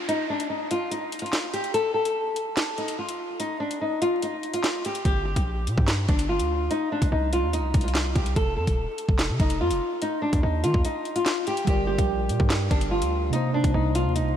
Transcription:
0.00 downlifter medium
0.08 0.26 D#4 loud
0.08 closed hi-hat medium
0.30 0.47 D4 medium
0.40 closed hi-hat medium
0.50 0.67 D#4 medium
0.71 0.88 F4 medium
0.71 closed hi-hat medium
0.91 1.20 D#4 medium
0.91 closed hi-hat medium
1.12 closed hi-hat medium
1.19 1.51 F4 medium
1.19 closed hi-hat medium
1.26 closed hi-hat soft
1.33 snare loud
1.33 clap medium
1.33 closed hi-hat medium
1.53 1.71 G4 medium
1.53 closed hi-hat medium
1.64 closed hi-hat medium
1.74 1.91 A4 loud
1.74 closed hi-hat medium
1.94 2.73 A4 medium
2.05 closed hi-hat medium
2.36 closed hi-hat medium
2.57 snare loud
2.57 clap medium
2.57 closed hi-hat medium
2.78 2.95 D#4 medium
2.78 closed hi-hat soft
2.88 closed hi-hat medium
2.99 3.37 F4 medium
3.08 closed hi-hat medium
3.40 3.57 D#4 loud
3.40 closed hi-hat medium
3.60 3.77 D4 medium
3.71 closed hi-hat medium
3.81 3.98 D#4 medium
4.02 4.19 F4 medium
4.02 closed hi-hat medium
4.22 4.52 D#4 medium
4.22 closed hi-hat medium
4.43 closed hi-hat soft
4.53 4.83 F4 medium
4.53 closed hi-hat medium
4.64 snare loud
4.64 clap medium
4.64 closed hi-hat medium
4.85 5.02 G4 medium
4.85 closed hi-hat medium
4.95 closed hi-hat medium
5.05 5.35 G1 loud
5.05 5.23 G4 loud
5.05 kick loud
5.05 closed hi-hat medium
5.25 6.04 G4 medium
5.36 5.69 A#1 loud
5.36 kick loud
5.36 closed hi-hat medium
5.67 5.77 A#2 loud
5.67 closed hi-hat medium
5.78 6.07 G2 loud
5.78 kick loud
5.88 snare loud
5.88 clap medium
5.88 closed hi-hat medium
6.09 6.41 G1 loud
6.09 6.26 D4 medium
6.09 kick loud
6.09 closed hi-hat soft
6.19 closed hi-hat medium
6.29 6.68 F4 medium
6.39 6.69 D2 loud
6.39 closed hi-hat medium
6.71 6.88 D#4 loud
6.71 closed hi-hat medium
6.92 7.09 D4 medium
7.02 7.11 C2 medium
7.02 kick loud
7.02 closed hi-hat medium
7.12 7.45 C2 loud
7.12 7.29 D#4 medium
7.33 7.50 F4 medium
7.33 closed hi-hat medium
7.43 7.60 D#2 loud
7.53 7.83 D#4 medium
7.53 closed hi-hat medium
7.59 7.73 C2 loud
7.74 8.14 C2 loud
7.74 kick loud
7.74 closed hi-hat medium
7.81 8.13 F4 medium
7.81 closed hi-hat medium
7.88 closed hi-hat soft
7.95 snare loud
7.95 clap medium
7.95 closed hi-hat medium
8.15 8.35 C2 loud
8.15 8.33 G4 medium
8.15 kick medium
8.15 closed hi-hat medium
8.26 closed hi-hat medium
8.36 8.59 F1 loud
8.36 8.53 A4 loud
8.36 kick loud
8.36 closed hi-hat medium
8.56 8.67 F2 loud
8.56 9.35 A4 medium
8.67 8.87 D#1 loud
8.67 kick loud
8.67 closed hi-hat medium
8.98 closed hi-hat medium
9.09 9.31 F1 loud
9.09 kick loud
9.19 snare loud
9.19 clap medium
9.19 closed hi-hat medium
9.30 9.39 C3 loud
9.40 9.62 F1 loud
9.40 9.57 D#4 medium
9.40 kick loud
9.40 closed hi-hat soft
9.50 closed hi-hat medium
9.61 9.72 F2 loud
9.61 9.99 F4 medium
9.71 9.81 F1 loud
9.71 closed hi-hat medium
10.02 10.19 D#4 loud
10.02 closed hi-hat medium
10.22 10.39 D4 medium
10.33 10.43 D#2 loud
10.33 kick loud
10.33 closed hi-hat medium
10.43 10.65 D#2 loud
10.43 10.60 D#4 medium
10.64 10.74 D#3 loud
10.64 10.81 F4 medium
10.64 closed hi-hat medium
10.74 10.85 D#2 loud
10.74 kick loud
10.85 11.14 D#4 medium
10.85 closed hi-hat medium
11.05 closed hi-hat soft
11.16 11.45 F4 medium
11.16 closed hi-hat medium
11.26 snare loud
11.26 clap medium
11.26 closed hi-hat medium
11.47 11.64 G4 medium
11.47 closed hi-hat medium
11.57 closed hi-hat medium
11.65 11.97 G1 loud
11.65 13.28 G3 medium
11.65 13.29 G4 medium
11.65 11.85 G4 loud
11.65 13.30 A#4 medium
11.65 kick loud
11.65 closed hi-hat medium
11.70 13.31 D5 medium
11.87 12.66 G4 medium
11.98 12.31 A#1 loud
11.98 kick loud
11.98 closed hi-hat medium
12.29 12.39 A#2 loud
12.29 closed hi-hat medium
12.40 12.70 G2 loud
12.40 kick loud
12.50 snare loud
12.50 clap medium
12.50 closed hi-hat medium
12.71 13.03 G1 loud
12.71 12.88 D4 medium
12.71 kick medium
12.71 closed hi-hat soft
12.81 closed hi-hat medium
12.91 13.30 F4 medium
13.02 13.31 D2 loud
13.02 closed hi-hat medium
13.30 14.37 C3 medium
13.30 14.37 A#3 medium
13.30 13.50 D#4 medium
13.30 14.37 D#4 medium
13.30 closed hi-hat medium
13.36 14.37 C5 medium
13.54 13.71 D4 medium
13.64 13.74 C2 loud
13.64 kick loud
13.64 closed hi-hat medium
13.74 14.07 C2 loud
13.74 13.91 D#4 medium
13.95 14.12 F4 medium
13.95 closed hi-hat medium
14.05 14.22 D#2 loud
14.15 14.37 D#4 medium
14.15 closed hi-hat medium
14.21 14.36 C2 loud

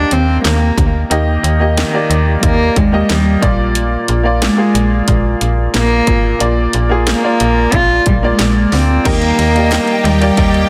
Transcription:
0.00 1.11 D#3 medium
0.00 1.10 A#3 medium
0.00 0.14 D4 loud
0.00 1.11 G4 medium
0.00 1.12 D#5 medium
0.00 0.29 G5 medium
0.11 0.39 D#2 medium
0.11 0.45 C4 medium
0.11 closed hi-hat medium
0.44 0.72 D#2 medium
0.44 0.91 A#3 medium
0.44 snare medium
0.44 clap medium
0.44 closed hi-hat medium
0.77 1.05 D2 medium
0.77 kick medium
0.77 closed hi-hat medium
1.10 1.38 D#2 medium
1.10 2.06 D#3 medium
1.10 1.48 A#3 medium
1.10 1.49 G4 medium
1.10 1.49 D#5 medium
1.10 closed hi-hat medium
1.43 1.84 D#2 loud
1.43 closed hi-hat medium
1.60 1.85 A#3 medium
1.60 1.85 G4 medium
1.60 1.86 D#5 medium
1.77 2.40 D#3 medium
1.77 snare loud
1.77 clap medium
1.77 closed hi-hat medium
1.93 2.68 A#3 medium
1.93 2.69 G4 medium
1.93 2.69 D5 medium
2.10 2.37 D#2 loud
2.10 closed hi-hat medium
2.43 2.70 D#2 medium
2.43 2.79 A#3 loud
2.43 kick medium
2.43 closed hi-hat medium
2.76 3.04 D#2 medium
2.76 3.12 G#3 medium
2.76 kick medium
2.76 closed hi-hat medium
2.92 3.39 A#3 medium
2.92 3.42 G4 medium
2.92 3.43 D#5 medium
3.09 3.37 D#2 medium
3.09 3.60 G3 medium
3.09 snare medium
3.09 clap medium
3.09 closed hi-hat medium
3.41 3.97 A#1 medium
3.41 4.37 A#2 medium
3.41 4.08 A#3 medium
3.41 4.08 F4 medium
3.41 4.09 D5 medium
3.41 kick loud
3.41 closed hi-hat medium
3.75 closed hi-hat medium
4.08 4.50 A#1 medium
4.08 closed hi-hat medium
4.23 4.49 A#3 medium
4.23 4.50 F4 medium
4.23 4.50 D5 medium
4.42 5.04 G#3 loud
4.42 snare loud
4.42 clap medium
4.42 closed hi-hat medium
4.57 5.58 A#3 medium
4.57 5.58 F4 medium
4.57 5.59 G#4 medium
4.74 5.02 A#1 medium
4.74 closed hi-hat medium
5.08 5.35 A#1 loud
5.08 kick medium
5.08 closed hi-hat medium
5.41 5.68 A#1 medium
5.41 closed hi-hat medium
5.74 6.02 A#1 medium
5.74 6.37 A#3 loud
5.74 snare medium
5.74 clap medium
5.74 closed hi-hat medium
6.07 6.35 G#1 medium
6.07 7.03 A#2 medium
6.07 kick medium
6.07 closed hi-hat medium
6.39 6.68 A#1 medium
6.39 6.77 A#3 medium
6.39 6.78 F4 medium
6.39 6.78 D5 medium
6.39 closed hi-hat medium
6.73 7.15 A#1 medium
6.73 closed hi-hat medium
6.89 7.15 A#3 medium
6.89 7.15 F4 medium
6.89 7.16 G#4 medium
7.07 7.76 A#3 medium
7.07 snare loud
7.07 clap medium
7.07 closed hi-hat medium
7.23 7.98 A#3 medium
7.23 7.99 F4 medium
7.23 7.99 D5 medium
7.40 7.67 A#1 medium
7.40 closed hi-hat medium
7.72 8.00 A#1 loud
7.72 8.07 F4 loud
7.72 kick medium
7.72 closed hi-hat medium
8.06 8.33 A#1 medium
8.06 8.15 G3 medium
8.06 kick medium
8.06 closed hi-hat medium
8.23 8.76 G#3 medium
8.23 8.85 A#3 medium
8.23 8.86 F4 medium
8.23 8.86 D5 medium
8.39 8.66 A#1 medium
8.39 snare loud
8.39 clap medium
8.39 closed hi-hat medium
8.72 8.99 D2 loud
8.72 9.10 C4 medium
8.72 snare soft
8.72 open hi-hat medium
9.05 9.33 D#2 loud
9.05 9.38 D#3 medium
9.05 10.01 D#3 medium
9.05 9.38 G3 medium
9.05 9.43 A#3 medium
9.05 9.39 A#3 medium
9.05 10.08 A#3 loud
9.05 9.38 D#4 medium
9.05 10.69 G4 medium
9.05 9.43 G4 medium
9.05 9.37 A#4 loud
9.05 9.44 D#5 medium
9.05 10.69 G5 medium
9.05 kick loud
9.05 crash medium
9.05 ride medium
9.22 ride soft
9.38 9.79 D#2 medium
9.38 9.70 A#3 medium
9.38 9.71 D#4 medium
9.38 9.71 A#4 medium
9.38 ride medium
9.55 10.05 A#3 medium
9.55 10.06 G4 medium
9.55 9.62 D5 medium
9.55 ride soft
9.63 10.09 D#5 medium
9.71 10.04 G3 medium
9.71 10.05 A#3 medium
9.71 10.04 D#4 medium
9.71 10.03 A#4 medium
9.71 snare loud
9.71 clap medium
9.71 ride medium
9.87 ride soft
10.04 10.31 D#2 loud
10.04 10.69 G3 medium
10.04 10.36 A#3 soft
10.04 10.37 D#4 medium
10.04 10.37 A#4 medium
10.04 ride medium
10.21 10.58 A#3 medium
10.21 10.59 G4 medium
10.21 10.59 D5 medium
10.21 ride soft
10.37 10.65 D#2 loud
10.37 10.69 D#3 medium
10.37 10.69 G3 medium
10.37 10.69 A#3 medium
10.37 10.69 D#4 medium
10.37 10.69 A#4 loud
10.37 kick medium
10.37 ride medium
10.54 ride soft

